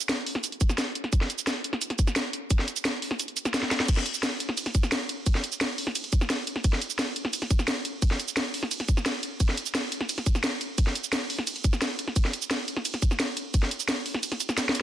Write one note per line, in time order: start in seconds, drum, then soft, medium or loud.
0.01 shaker medium
0.09 snare loud
0.09 closed hi-hat loud
0.09 shaker medium
0.26 open hi-hat medium
0.35 snare soft
0.44 closed hi-hat loud
0.44 shaker medium
0.52 closed hi-hat soft
0.61 kick loud
0.61 closed hi-hat medium
0.61 shaker medium
0.69 snare soft
0.69 shaker soft
0.78 snare loud
0.78 closed hi-hat medium
0.78 shaker soft
0.95 closed hi-hat medium
1.04 snare soft
1.13 kick loud
1.13 closed hi-hat loud
1.13 shaker medium
1.21 snare soft
1.30 closed hi-hat medium
1.30 shaker soft
1.38 shaker medium
1.47 snare loud
1.47 closed hi-hat loud
1.47 shaker medium
1.64 closed hi-hat medium
1.73 snare soft
1.82 closed hi-hat loud
1.82 shaker medium
1.90 snare soft
1.90 closed hi-hat soft
1.99 kick loud
1.99 closed hi-hat medium
1.99 shaker medium
2.07 snare soft
2.07 shaker soft
2.16 snare loud
2.16 closed hi-hat loud
2.16 shaker medium
2.33 closed hi-hat medium
2.51 kick loud
2.51 closed hi-hat loud
2.51 shaker medium
2.59 snare soft
2.68 closed hi-hat medium
2.68 shaker soft
2.76 closed hi-hat soft
2.76 shaker medium
2.85 snare loud
2.85 closed hi-hat loud
2.85 shaker medium
3.02 open hi-hat medium
3.11 snare soft
3.19 closed hi-hat loud
3.19 shaker medium
3.28 closed hi-hat soft
3.37 closed hi-hat medium
3.37 shaker medium
3.45 snare medium
3.45 closed hi-hat soft
3.45 shaker soft
3.54 snare loud
3.54 closed hi-hat loud
3.54 shaker medium
3.63 snare medium
3.71 snare medium
3.71 closed hi-hat medium
3.71 shaker soft
3.80 snare medium
3.88 kick loud
3.88 closed hi-hat loud
3.88 crash medium
3.88 ride medium
3.88 shaker medium
3.97 snare soft
4.06 closed hi-hat medium
4.06 ride soft
4.06 shaker soft
4.14 shaker medium
4.23 snare loud
4.23 closed hi-hat loud
4.23 ride medium
4.23 shaker medium
4.40 closed hi-hat medium
4.40 ride medium
4.49 snare medium
4.57 closed hi-hat loud
4.57 ride medium
4.57 shaker medium
4.66 snare soft
4.66 closed hi-hat soft
4.75 kick loud
4.75 closed hi-hat medium
4.75 ride medium
4.75 shaker medium
4.83 snare medium
4.83 shaker soft
4.92 snare loud
4.92 closed hi-hat medium
4.92 ride medium
4.92 shaker soft
5.09 closed hi-hat medium
5.09 ride medium
5.26 kick loud
5.26 closed hi-hat medium
5.26 ride medium
5.26 shaker soft
5.35 snare soft
5.44 closed hi-hat medium
5.44 ride medium
5.44 shaker soft
5.52 shaker medium
5.61 snare loud
5.61 closed hi-hat loud
5.61 ride medium
5.61 shaker medium
5.78 open hi-hat medium
5.78 ride medium
5.87 snare soft
5.95 closed hi-hat loud
5.95 ride medium
5.95 shaker soft
6.04 closed hi-hat soft
6.13 kick loud
6.13 closed hi-hat medium
6.13 ride medium
6.13 shaker medium
6.21 snare soft
6.21 shaker soft
6.30 snare loud
6.30 closed hi-hat medium
6.30 ride medium
6.30 shaker soft
6.47 closed hi-hat medium
6.47 ride medium
6.56 snare soft
6.64 kick loud
6.64 closed hi-hat medium
6.64 ride medium
6.64 shaker soft
6.73 snare soft
6.82 closed hi-hat medium
6.82 ride medium
6.82 shaker soft
6.90 shaker medium
6.99 snare loud
6.99 closed hi-hat medium
6.99 ride medium
6.99 shaker soft
7.16 closed hi-hat medium
7.16 ride medium
7.25 snare medium
7.33 closed hi-hat medium
7.33 ride medium
7.33 shaker soft
7.42 snare soft
7.42 closed hi-hat soft
7.51 kick loud
7.51 closed hi-hat medium
7.51 ride medium
7.51 shaker medium
7.59 snare soft
7.59 shaker soft
7.68 snare loud
7.68 closed hi-hat medium
7.68 ride medium
7.68 shaker soft
7.85 closed hi-hat medium
7.85 ride medium
8.02 kick loud
8.02 closed hi-hat medium
8.02 ride medium
8.02 shaker soft
8.11 snare soft
8.20 closed hi-hat medium
8.20 ride medium
8.20 shaker soft
8.28 shaker medium
8.37 snare loud
8.37 closed hi-hat medium
8.37 ride medium
8.37 shaker medium
8.54 open hi-hat medium
8.54 ride medium
8.63 snare soft
8.71 closed hi-hat medium
8.71 ride medium
8.71 shaker soft
8.80 snare soft
8.80 closed hi-hat soft
8.88 kick loud
8.88 closed hi-hat medium
8.88 ride medium
8.88 shaker medium
8.97 snare soft
8.97 shaker soft
9.06 snare loud
9.06 closed hi-hat medium
9.06 ride medium
9.06 shaker soft
9.23 closed hi-hat medium
9.23 ride medium
9.40 kick loud
9.40 closed hi-hat medium
9.40 ride medium
9.40 shaker medium
9.49 snare soft
9.57 closed hi-hat medium
9.57 ride medium
9.57 shaker soft
9.66 shaker medium
9.75 snare loud
9.75 closed hi-hat medium
9.75 ride medium
9.75 shaker medium
9.92 closed hi-hat medium
9.92 ride medium
10.01 snare soft
10.09 closed hi-hat loud
10.09 ride medium
10.09 shaker medium
10.18 snare soft
10.18 closed hi-hat soft
10.26 kick loud
10.26 closed hi-hat medium
10.26 ride medium
10.26 shaker medium
10.35 snare soft
10.35 shaker soft
10.44 snare loud
10.44 closed hi-hat medium
10.44 ride medium
10.44 shaker medium
10.61 closed hi-hat medium
10.61 ride medium
10.78 kick loud
10.78 closed hi-hat medium
10.78 ride medium
10.78 shaker medium
10.87 snare soft
10.95 closed hi-hat medium
10.95 ride medium
10.95 shaker soft
11.04 shaker medium
11.13 snare loud
11.13 closed hi-hat loud
11.13 ride medium
11.13 shaker medium
11.30 open hi-hat medium
11.30 ride medium
11.39 snare soft
11.47 closed hi-hat loud
11.47 ride medium
11.47 shaker medium
11.56 closed hi-hat soft
11.64 kick loud
11.64 closed hi-hat medium
11.64 ride medium
11.64 shaker medium
11.73 snare soft
11.73 shaker soft
11.82 snare loud
11.82 closed hi-hat medium
11.82 ride medium
11.82 shaker medium
11.99 closed hi-hat medium
11.99 ride medium
12.08 snare soft
12.16 kick loud
12.16 closed hi-hat loud
12.16 ride medium
12.16 shaker medium
12.25 snare soft
12.33 closed hi-hat medium
12.33 ride medium
12.33 shaker soft
12.42 shaker medium
12.51 snare loud
12.51 closed hi-hat loud
12.51 ride medium
12.51 shaker medium
12.68 closed hi-hat medium
12.68 ride medium
12.77 snare soft
12.85 closed hi-hat loud
12.85 ride medium
12.85 shaker medium
12.94 snare soft
12.94 closed hi-hat soft
13.02 kick loud
13.02 closed hi-hat medium
13.02 ride medium
13.02 shaker medium
13.11 snare soft
13.11 shaker soft
13.20 snare loud
13.20 closed hi-hat medium
13.20 ride medium
13.20 shaker medium
13.37 closed hi-hat medium
13.37 ride medium
13.54 kick loud
13.54 closed hi-hat loud
13.54 ride medium
13.54 shaker medium
13.63 snare soft
13.71 closed hi-hat medium
13.71 ride medium
13.71 shaker soft
13.80 closed hi-hat soft
13.80 shaker medium
13.89 snare loud
13.89 closed hi-hat loud
13.89 ride medium
13.89 shaker medium
14.06 open hi-hat medium
14.06 ride medium
14.14 snare soft
14.23 closed hi-hat loud
14.23 ride medium
14.23 shaker medium
14.32 snare soft
14.32 closed hi-hat soft
14.40 closed hi-hat medium
14.40 ride medium
14.40 shaker medium
14.49 snare medium
14.49 closed hi-hat soft
14.49 shaker soft
14.58 snare medium
14.58 closed hi-hat medium
14.58 ride medium
14.58 shaker medium
14.69 snare medium
14.75 closed hi-hat medium
14.75 ride medium
14.75 shaker soft